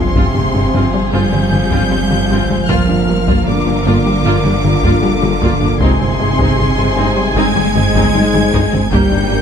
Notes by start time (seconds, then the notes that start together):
Already playing: G1 C3 F3 C4 G#4 C5 F5 G#5 C6, sub drop
0.15 G1 G2 F3 C4 F4, taiko
0.35 G1 G2 G#3 C4
0.55 G1 G2 G#3 C4
0.74 G1 G2 F3 C4 F4
0.94 G3
1.12 G1 G2 F3 G3 C4 F4 G6
1.32 G1 G3 C4, taiko mid
1.52 G1 G2 G#3 C4, taiko mid
1.71 G1 G2 F3 C4 F4, taiko
1.91 G1 G3 C4
2.11 G1 G3 G#3 C4, taiko mid
2.30 G1 G2 F3 C4 F4, taiko
2.50 G1 G2 G#3 C4, taiko mid
2.68 G1 G2 F3 A#3 F4 A#4 F6, taiko
2.89 G1 G2 A#3 D4
3.08 G1 G2 A#3 A#4
3.27 G1 G2 A#3 F4, taiko
3.46 G1 G2 D3 A#3 D4 D6
3.66 G1 G2 A#3 D4
3.85 G1 G2 A#3 F4
4.06 G3
4.25 G1 G2 A#3 F4
4.44 G1 G3 A#3 D4 F4, taiko mid
4.63 G1 G2 A#3 D4, taiko mid
4.83 G1 G2 A#3 F4, taiko
5.02 G1 G3 A#3 D4 F4
5.22 G1 G3 A#3 F4, taiko mid
5.41 G1 G2 A#3 F4, taiko
5.61 G1 G2 A#3 D4, taiko mid
5.80 G1 G2 C3 G#3 C4 D#4 G#4 C5 G#5 C6, taiko
6.00 G1 G2 C4
6.19 G1 G2 G#3 C4 G#4
6.39 G1 G2 G#3 C4 D#4, taiko
6.58 G1 G2 C4
6.77 G1 G2 G#3 C4
6.97 G1 G2 G#3 C4 D#4
7.16 G3
7.36 G1 G2 G#3 C4 D#4 G#6
7.55 G1 G3 C4 D#4, taiko mid
7.76 G1 G2 G#3 C4, taiko mid
7.95 G1 G2 G#3 C4 D#4, taiko
8.14 G1 G3 C4 D#4
8.33 G1 G3 G#3 C4 D#4, taiko mid
8.53 G1 G2 G#3 C4 D#4, taiko
8.72 G1 G2 C4, taiko mid
8.91 G1 G2 G3 A#3 D4 G4 A#4 G5 G6, taiko
9.11 G1 G2 A#3 D4
9.31 G1 G2 A#3 G4